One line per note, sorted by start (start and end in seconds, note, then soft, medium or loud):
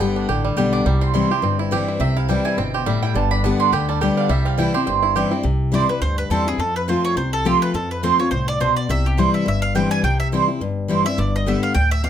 0.00 0.24 G1 medium
0.00 0.26 G2 medium
0.00 0.13 D3 medium
0.00 0.27 D3 medium
0.00 0.27 G3 medium
0.00 0.41 B3 medium
0.00 0.28 B3 medium
0.00 0.28 G4 medium
0.00 0.28 G4 loud
0.00 0.41 G5 medium
0.16 0.55 D4 medium
0.29 0.53 A1 medium
0.29 0.55 D3 medium
0.29 0.57 G4 medium
0.45 0.86 G3 medium
0.57 0.81 B1 medium
0.57 0.84 D3 loud
0.57 0.85 G3 medium
0.57 0.85 B3 loud
0.57 1.31 G4 medium
0.57 0.85 G4 loud
0.73 0.86 D4 medium
0.73 0.99 D6 loud
0.86 1.22 C2 medium
0.86 1.41 C3 medium
0.86 2.26 G3 medium
1.01 1.41 C4 medium
1.01 1.12 C6 loud
1.14 1.30 E3 medium
1.14 1.30 G3 medium
1.14 1.30 C4 medium
1.14 1.56 E4 medium
1.14 1.29 E4 medium
1.14 1.56 C6 medium
1.30 1.43 C4 soft
1.30 1.42 E4 medium
1.30 1.72 G4 medium
1.42 1.79 G1 medium
1.42 1.97 G2 medium
1.42 1.85 C4 medium
1.59 1.98 E4 medium
1.71 1.99 E3 loud
1.71 1.99 G3 loud
1.71 1.99 C4 loud
1.71 2.00 E4 loud
1.71 2.74 G4 medium
1.88 2.00 C4 medium
1.99 2.36 C2 loud
1.99 2.55 C3 loud
1.99 2.42 C4 medium
1.99 2.16 E5 loud
2.17 2.44 E4 medium
2.17 2.29 F5 loud
2.28 2.56 E3 medium
2.28 2.86 G3 medium
2.28 2.57 G3 loud
2.28 2.57 C4 medium
2.28 2.57 E4 medium
2.28 2.44 G5 medium
2.45 2.84 E4 medium
2.45 2.57 G#5 loud
2.57 2.93 G1 medium
2.57 2.85 B2 medium
2.57 2.99 C4 medium
2.57 2.73 G5 medium
2.74 3.73 G4 medium
2.74 2.86 C5 medium
2.86 3.14 A2 loud
2.86 3.89 G3 medium
2.86 3.02 E5 medium
3.02 3.15 E4 medium
3.02 3.15 G5 loud
3.14 3.50 G1 loud
3.14 3.70 G2 loud
3.14 3.57 D3 medium
3.14 3.31 A5 medium
3.31 3.59 D4 medium
3.31 3.43 B5 loud
3.44 3.71 D3 medium
3.44 3.72 G3 medium
3.44 3.85 B3 medium
3.44 3.72 B3 loud
3.44 3.72 G4 loud
3.44 3.59 A5 medium
3.60 3.99 D4 medium
3.60 3.72 C6 loud
3.72 4.08 D2 medium
3.72 4.00 D3 medium
3.72 4.01 G4 medium
3.72 3.88 B5 loud
3.89 4.29 G3 medium
3.89 4.01 A5 loud
4.01 4.29 D3 medium
4.01 4.29 G3 medium
4.01 4.29 B3 loud
4.01 4.74 G4 medium
4.01 4.29 G4 loud
4.01 4.17 G5 medium
4.17 4.30 D4 medium
4.17 4.30 F5 loud
4.29 4.65 C2 loud
4.29 4.85 C3 medium
4.29 4.71 G3 medium
4.29 4.46 E5 medium
4.45 4.84 C4 medium
4.45 4.58 F5 loud
4.58 4.73 E3 medium
4.58 4.74 G3 medium
4.58 4.74 C4 medium
4.58 5.00 E4 medium
4.58 4.73 E4 loud
4.58 4.74 G5 loud
4.74 4.87 C4 medium
4.74 4.86 E4 medium
4.74 5.13 G4 medium
4.74 5.34 C6 loud
4.87 5.23 G1 medium
4.87 5.42 G2 loud
4.87 5.29 C4 medium
5.03 5.42 E4 medium
5.16 5.31 E3 medium
5.16 5.32 G3 loud
5.16 5.31 C4 loud
5.16 5.30 E4 loud
5.16 5.45 G4 medium
5.31 5.44 C4 medium
5.31 5.44 E4 medium
5.43 5.80 C2 medium
5.43 5.99 C3 medium
5.72 5.88 E3 medium
5.72 5.88 G3 medium
5.72 5.83 C4 medium
5.72 5.89 C4 medium
5.72 5.83 E4 medium
5.72 5.88 E4 loud
5.72 5.84 C5 medium
5.72 5.89 D5 medium
5.72 5.84 G5 loud
5.89 6.02 C4 medium
5.89 6.01 E4 medium
5.89 6.01 B4 medium
6.01 6.26 D2 medium
6.01 6.57 G2 medium
6.01 6.17 C5 medium
6.18 6.30 B4 medium
6.30 6.55 E2 medium
6.30 6.46 E3 medium
6.30 6.46 G3 medium
6.30 6.41 C4 medium
6.30 6.46 C4 medium
6.30 6.41 E4 medium
6.30 6.46 E4 loud
6.30 6.46 A4 medium
6.30 6.41 C5 loud
6.30 6.41 G5 loud
6.47 6.60 C4 soft
6.47 6.59 E4 medium
6.47 6.60 G#4 medium
6.58 6.94 F2 medium
6.58 7.14 F2 medium
6.58 6.75 A4 medium
6.76 6.88 B4 medium
6.88 7.15 F3 medium
6.88 7.16 A3 medium
6.88 6.98 C4 medium
6.88 7.16 C4 loud
6.88 6.98 F4 medium
6.88 7.16 F4 medium
6.88 6.98 C5 medium
6.88 7.04 C5 medium
6.88 6.98 A5 loud
7.05 7.17 C#5 medium
7.16 7.52 C2 medium
7.16 7.72 C3 medium
7.16 7.32 C5 medium
7.33 7.45 A4 loud
7.45 7.73 F3 loud
7.45 7.73 A3 medium
7.45 7.55 C4 medium
7.45 7.73 C4 medium
7.45 7.55 F4 medium
7.45 7.74 F4 loud
7.45 7.61 G4 medium
7.45 7.56 C5 loud
7.45 7.56 A5 medium
7.62 7.74 B4 medium
7.74 8.10 F2 medium
7.74 8.29 F2 medium
7.74 7.90 A4 medium
7.91 8.03 B4 medium
8.03 8.18 F3 medium
8.03 8.19 A3 loud
8.03 8.13 C4 medium
8.03 8.19 C4 loud
8.03 8.13 F4 medium
8.03 8.19 F4 loud
8.03 8.13 C5 loud
8.03 8.19 C5 medium
8.03 8.13 A5 loud
8.20 8.32 C4 medium
8.20 8.32 F4 medium
8.20 8.31 C#5 medium
8.31 8.67 C2 medium
8.31 8.59 A2 medium
8.31 8.47 C5 medium
8.48 8.60 D5 loud
8.60 8.88 B2 medium
8.60 8.70 C4 medium
8.60 8.70 F4 medium
8.60 8.71 C5 medium
8.60 8.76 C5 medium
8.60 8.71 A5 medium
8.76 8.89 D5 medium
8.89 9.25 C2 medium
8.89 9.44 C3 medium
8.89 9.05 E5 medium
9.06 9.18 G4 medium
9.17 9.45 E3 medium
9.17 9.45 G3 medium
9.17 9.27 C4 medium
9.17 9.46 C4 medium
9.17 9.28 E4 medium
9.17 9.46 E4 loud
9.17 9.28 C5 medium
9.17 9.33 C5 medium
9.17 9.28 G5 medium
9.34 9.46 E5 medium
9.46 9.82 G1 medium
9.46 10.01 G2 medium
9.46 9.62 E5 medium
9.62 9.74 F5 medium
9.75 10.02 E3 loud
9.75 10.03 G3 loud
9.75 9.85 C4 medium
9.75 10.03 C4 loud
9.75 9.85 E4 medium
9.75 10.03 E4 loud
9.75 9.86 C5 medium
9.75 9.91 G5 medium
9.75 9.86 G5 medium
9.91 10.03 G#5 loud
10.03 10.39 C2 medium
10.03 10.59 C3 medium
10.03 10.19 G5 medium
10.20 10.27 E5 medium
10.32 10.48 E3 medium
10.32 10.48 G3 medium
10.32 10.42 C4 medium
10.32 10.48 C4 medium
10.32 10.42 E4 medium
10.32 10.47 E4 loud
10.32 10.43 C5 loud
10.32 10.43 G5 medium
10.48 10.61 C4 soft
10.48 10.60 E4 medium
10.60 10.96 G1 medium
10.60 11.16 G2 medium
10.88 11.04 E3 loud
10.88 11.05 G3 loud
10.88 10.99 C4 medium
10.88 11.05 C4 medium
10.88 11.00 E4 medium
10.88 11.03 E4 loud
10.88 11.00 C5 medium
10.88 11.00 G5 medium
11.05 11.18 C4 soft
11.05 11.17 E4 medium
11.05 11.18 E5 loud
11.18 11.54 G1 loud
11.18 11.73 G2 medium
11.18 11.34 D5 medium
11.36 11.47 D#5 medium
11.46 11.74 D3 medium
11.46 11.74 G3 medium
11.46 11.57 B3 medium
11.46 11.75 B3 medium
11.46 11.57 G4 medium
11.46 11.75 G4 loud
11.46 11.57 D5 medium
11.46 11.63 E5 medium
11.46 11.57 G5 medium
11.63 11.74 F5 medium
11.74 12.10 D2 medium
11.74 12.03 A2 medium
11.74 11.90 G5 loud
11.91 12.04 E5 loud
12.04 12.10 B2 medium
12.04 12.10 B3 medium
12.04 12.10 G4 medium
12.04 12.10 D5 loud
12.04 12.10 F5 medium
12.04 12.10 G5 loud